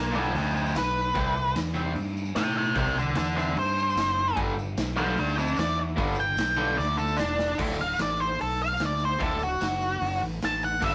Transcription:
0.00 0.34 B1 loud
0.00 0.14 F4 medium
0.00 0.16 D5 loud
0.06 tambourine soft
0.13 0.31 G2 medium
0.13 0.32 D3 medium
0.13 0.32 G3 loud
0.13 tambourine medium
0.18 0.36 F4 medium
0.18 0.36 A4 medium
0.26 tambourine soft
0.35 0.74 D2 loud
0.35 0.55 F4 medium
0.35 0.55 A4 medium
0.35 tambourine soft
0.35 crash medium
0.56 0.75 F4 medium
0.56 0.76 A4 medium
0.56 tambourine medium
0.66 tambourine medium
0.75 1.15 B1 medium
0.75 1.55 B4 loud
0.75 snare loud
0.75 tambourine loud
0.75 crash medium
0.97 tambourine soft
1.05 tambourine soft
1.14 1.55 C2 loud
1.14 1.32 C3 medium
1.14 1.33 G3 loud
1.14 1.33 C4 loud
1.14 kick loud
1.14 crash medium
1.36 tambourine medium
1.47 tambourine soft
1.55 1.94 E2 medium
1.55 snare loud
1.55 tambourine loud
1.55 crash medium
1.74 1.92 C3 medium
1.74 1.92 G3 medium
1.74 1.93 C4 loud
1.74 tambourine medium
1.94 2.34 G2 loud
1.94 crash medium
2.17 tambourine medium
2.25 tambourine medium
2.35 2.75 A2 medium
2.35 2.56 E5 medium
2.35 2.57 G5 loud
2.35 snare loud
2.35 tambourine loud
2.35 crash medium
2.57 2.76 E5 medium
2.57 2.77 G5 loud
2.75 3.15 C2 loud
2.75 2.93 C3 loud
2.75 2.93 G3 loud
2.75 2.93 C4 loud
2.75 2.97 E5 medium
2.75 2.98 G5 loud
2.75 kick loud
2.75 crash medium
2.98 3.17 A4 loud
2.98 3.17 D5 loud
2.98 tambourine medium
3.09 tambourine soft
3.15 3.55 E2 loud
3.15 3.36 A4 medium
3.15 3.37 D5 medium
3.15 snare loud
3.15 crash medium
3.19 tambourine loud
3.35 3.53 C3 medium
3.35 3.53 G3 loud
3.35 3.53 C4 loud
3.35 3.56 A4 medium
3.35 3.57 D5 medium
3.35 tambourine medium
3.56 3.95 G2 loud
3.56 4.36 C5 loud
3.56 crash medium
3.78 tambourine medium
3.90 tambourine medium
3.96 4.35 F#1 medium
3.96 snare loud
3.96 tambourine loud
3.96 crash medium
4.37 4.76 G1 loud
4.37 4.53 G2 loud
4.37 4.54 D3 loud
4.37 4.54 G3 loud
4.37 kick loud
4.37 crash medium
4.58 tambourine medium
4.68 tambourine soft
4.77 5.16 B1 loud
4.77 snare loud
4.77 tambourine loud
4.77 crash medium
4.96 5.13 G2 loud
4.96 5.13 D3 loud
4.96 5.14 G3 loud
4.96 5.18 F5 medium
4.96 5.17 A5 medium
4.96 tambourine medium
5.18 5.57 D2 loud
5.18 5.37 B4 medium
5.18 5.39 G5 loud
5.18 crash medium
5.37 5.56 A4 medium
5.37 5.58 F5 medium
5.37 tambourine medium
5.47 tambourine medium
5.56 5.97 E2 medium
5.56 5.78 D5 loud
5.56 snare loud
5.56 tambourine loud
5.56 crash medium
5.96 6.36 G1 loud
5.96 6.13 G2 loud
5.96 6.14 D3 loud
5.96 6.14 G3 loud
5.96 kick loud
5.96 tambourine soft
5.96 crash medium
6.07 tambourine soft
6.15 tambourine medium
6.20 6.78 G5 loud
6.37 6.76 B1 medium
6.37 snare loud
6.37 tambourine loud
6.37 crash medium
6.48 tambourine soft
6.56 6.74 G2 medium
6.56 6.74 D3 loud
6.56 6.74 G3 loud
6.56 tambourine medium
6.67 tambourine soft
6.76 7.17 D2 loud
6.76 6.98 D5 medium
6.76 snare medium
6.76 tambourine soft
6.88 tambourine soft
6.97 7.18 A4 loud
6.97 tambourine medium
7.07 tambourine medium
7.16 7.58 E1 medium
7.16 7.57 D4 loud
7.16 snare loud
7.16 tambourine loud
7.26 tambourine soft
7.36 snare loud
7.36 tambourine soft
7.46 tambourine soft
7.55 7.94 D1 medium
7.55 7.75 D2 medium
7.55 crash loud
7.55 tambourine medium
7.59 7.75 A2 medium
7.59 7.76 D3 loud
7.59 kick loud
7.76 tambourine medium
7.81 8.00 F5 loud
7.95 8.34 A1 medium
7.95 open hi-hat medium
7.95 tambourine medium
7.99 8.20 D5 medium
7.99 snare loud
8.16 tambourine medium
8.20 8.40 C5 medium
8.38 8.76 B1 medium
8.38 8.60 A4 medium
8.38 open hi-hat medium
8.38 tambourine soft
8.58 tambourine soft
8.62 8.81 F5 medium
8.77 9.16 D2 medium
8.77 snare loud
8.77 open hi-hat medium
8.77 tambourine loud
8.86 9.03 D5 medium
8.98 tambourine medium
9.05 9.23 C5 medium
9.18 9.56 D1 loud
9.18 9.36 D2 medium
9.18 9.37 A2 medium
9.18 9.37 D3 loud
9.18 kick loud
9.18 open hi-hat medium
9.18 tambourine medium
9.23 9.42 A4 medium
9.39 tambourine medium
9.43 10.21 F#4 loud
9.60 9.96 F#1 medium
9.60 snare loud
9.60 open hi-hat medium
9.60 tambourine loud
9.81 tambourine medium
10.01 10.19 F#1 loud
10.01 open hi-hat medium
10.01 tambourine soft
10.20 10.40 A1 loud
10.20 tambourine soft
10.42 10.78 A1 medium
10.42 10.63 A5 loud
10.42 snare loud
10.42 open hi-hat medium
10.42 tambourine loud
10.62 10.83 F#5 medium
10.62 tambourine medium
10.81 10.95 G1 loud
10.81 10.95 G2 medium
10.81 10.95 D3 medium
10.81 10.95 G3 loud
10.81 10.95 E5 loud
10.81 kick loud
10.81 crash loud
10.81 tambourine medium

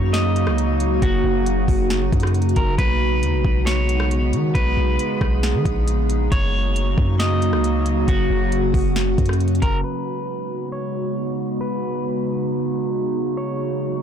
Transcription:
0.00 0.48 F#2 loud
0.00 6.28 C#3 medium
0.00 2.75 F#3 medium
0.00 2.75 A#3 medium
0.00 6.28 D#4 medium
0.00 4.51 F#4 loud
0.13 0.98 D#5 medium
0.13 snare loud
0.13 closed hi-hat medium
0.36 closed hi-hat medium
0.47 0.99 C#2 loud
0.47 cross-stick loud
0.58 closed hi-hat medium
0.80 closed hi-hat medium
1.02 1.23 F#1 loud
1.02 2.53 F#4 loud
1.02 kick loud
1.02 closed hi-hat medium
1.24 1.67 F#1 loud
1.46 closed hi-hat medium
1.68 2.11 F#1 loud
1.68 kick loud
1.68 open hi-hat medium
1.90 snare loud
1.90 closed hi-hat medium
2.12 2.55 F#2 loud
2.12 kick loud
2.12 closed hi-hat medium
2.20 cross-stick loud
2.20 closed hi-hat medium
2.27 closed hi-hat medium
2.34 closed hi-hat soft
2.42 closed hi-hat soft
2.49 closed hi-hat soft
2.56 2.78 F#1 loud
2.56 2.77 A#4 medium
2.56 kick medium
2.56 closed hi-hat medium
2.78 3.24 B1 loud
2.78 6.28 G#3 medium
2.78 6.28 B3 medium
2.78 3.63 B4 loud
2.78 kick loud
2.78 closed hi-hat medium
3.23 3.35 D#2 loud
3.23 closed hi-hat medium
3.34 3.44 B1 loud
3.45 4.34 B1 loud
3.45 kick medium
3.66 4.51 C#5 medium
3.66 snare loud
3.66 closed hi-hat medium
3.89 closed hi-hat medium
4.00 cross-stick loud
4.11 closed hi-hat medium
4.33 4.54 D#3 loud
4.33 closed hi-hat medium
4.55 4.76 B1 loud
4.55 6.30 G#4 medium
4.55 5.83 B4 loud
4.55 kick loud
4.55 closed hi-hat medium
4.77 4.98 B1 loud
4.99 closed hi-hat medium
5.21 5.56 B1 loud
5.21 kick loud
5.21 cross-stick medium
5.43 snare loud
5.43 closed hi-hat medium
5.54 5.65 D#3 loud
5.65 6.29 A#1 loud
5.65 kick loud
5.65 closed hi-hat medium
5.88 closed hi-hat medium
6.10 closed hi-hat medium
6.31 6.95 F#1 loud
6.31 9.81 C#3 medium
6.31 9.81 F#3 medium
6.31 9.81 A#3 medium
6.31 8.06 D#4 medium
6.31 9.81 F#4 medium
6.31 7.16 C#5 loud
6.31 kick loud
6.31 closed hi-hat medium
6.76 closed hi-hat medium
6.98 7.54 F#2 loud
6.98 kick loud
7.19 8.04 D#5 medium
7.19 snare loud
7.19 closed hi-hat medium
7.42 closed hi-hat medium
7.53 8.05 C#2 loud
7.53 cross-stick medium
7.64 closed hi-hat medium
7.86 closed hi-hat medium
8.08 8.29 F#1 loud
8.08 9.83 C#4 medium
8.08 9.59 F#4 loud
8.08 kick loud
8.08 closed hi-hat medium
8.30 8.72 F#1 loud
8.52 closed hi-hat medium
8.74 9.16 F#1 loud
8.74 kick loud
8.74 open hi-hat medium
8.96 snare loud
8.96 closed hi-hat medium
9.18 9.61 F#2 loud
9.18 kick medium
9.18 closed hi-hat medium
9.26 cross-stick medium
9.26 closed hi-hat medium
9.33 closed hi-hat medium
9.40 closed hi-hat soft
9.48 closed hi-hat soft
9.55 closed hi-hat soft
9.62 9.84 F#1 loud
9.62 9.83 A#4 medium
9.62 kick loud
9.62 closed hi-hat medium
9.84 14.02 C#3 medium
9.84 13.34 G#3 medium
9.84 13.34 B3 medium
9.84 14.02 D#4 medium
9.84 14.02 F#4 medium
9.84 10.69 B4 loud
10.72 11.57 C#5 medium
11.61 12.89 B4 loud
13.37 14.02 F#3 medium
13.37 14.02 A#3 medium
13.37 14.02 C#5 loud

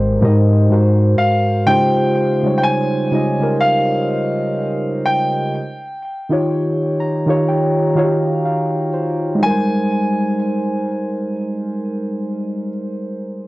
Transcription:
0.00 0.18 G#1 loud
0.00 0.21 G#2 medium
0.00 0.22 G#3 medium
0.00 0.22 G4 medium
0.00 0.23 A#4 medium
0.00 0.72 C5 loud
0.00 1.14 D#5 medium
0.21 0.68 G#2 medium
0.21 1.15 G#2 loud
0.21 0.69 G#3 medium
0.21 0.71 G4 medium
0.21 0.71 A#4 medium
0.21 0.72 D#5 loud
0.69 1.61 G#2 medium
0.69 1.61 G#3 medium
0.69 1.62 F#4 medium
0.69 1.62 A#4 medium
0.69 1.63 C5 loud
1.18 1.63 F5 medium
1.66 2.37 C#3 loud
1.66 2.37 G#3 medium
1.66 2.38 D#4 medium
1.66 2.38 F4 medium
1.66 2.39 G4 medium
1.66 2.39 C5 loud
1.66 2.56 G5 loud
2.42 3.07 C#3 medium
2.42 3.09 G3 medium
2.42 3.08 G#3 medium
2.42 3.08 D#4 medium
2.42 3.08 F4 medium
2.42 3.09 C#5 medium
2.58 2.64 G5 medium
2.63 3.57 G#5 loud
3.11 3.38 C#3 medium
3.11 3.38 G#3 medium
3.11 3.38 D#4 medium
3.11 3.39 F4 medium
3.11 3.39 G4 medium
3.11 3.40 D#5 medium
3.39 5.17 C#3 medium
3.39 5.18 G#3 medium
3.39 5.18 D#4 medium
3.39 5.18 F4 medium
3.39 5.19 G4 medium
3.39 5.19 A#4 medium
3.61 5.02 F5 medium
5.06 8.89 G5 medium
6.29 7.19 D#3 medium
6.29 7.19 D#4 medium
6.29 7.20 F4 medium
6.29 7.20 G4 medium
6.29 7.21 C#5 medium
7.00 7.45 A#5 medium
7.26 7.91 D#3 medium
7.26 7.92 D#4 medium
7.26 7.92 F4 medium
7.26 7.93 G4 medium
7.26 7.93 C#5 loud
7.48 7.93 G5 medium
7.95 9.32 D#3 medium
7.95 9.32 D#4 medium
7.95 9.33 F4 medium
7.95 8.04 F#4 medium
7.95 9.34 C#5 loud
7.95 8.41 F5 medium
8.04 9.37 G4 medium
8.45 8.90 F5 medium
8.94 9.38 C5 medium
9.35 12.61 G#3 medium
9.35 12.65 D#4 medium
9.42 12.68 G3 medium
9.42 12.72 A#4 medium
9.42 12.69 G#5 medium
9.50 12.76 C5 medium

